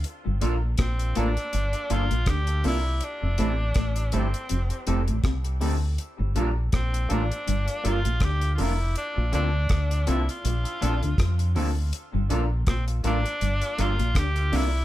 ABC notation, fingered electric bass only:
X:1
M:4/4
L:1/16
Q:"Swing 16ths" 1/4=81
K:Gdor
V:1 name="Fingered electric bass" clef=bass
z G,,, B,,,2 B,,,2 A,,, z G,,, z G,,, B,,, D,,2 C,,2 | z F,,, A,,,2 A,,,2 G,,, z F,,, z F,,, A,,, C,,2 D,,2 | z G,,, B,,,2 B,,,2 A,,, z G,,, z G,,, B,,, D,,2 F,,,2 | z B,,, D,,2 D,,2 C,, z B,,, z B,,, D,, F,,2 D,,2 |
z G,,, B,,,2 B,,,2 A,,, z G,,, z G,,, B,,, D,,2 C,,2 |]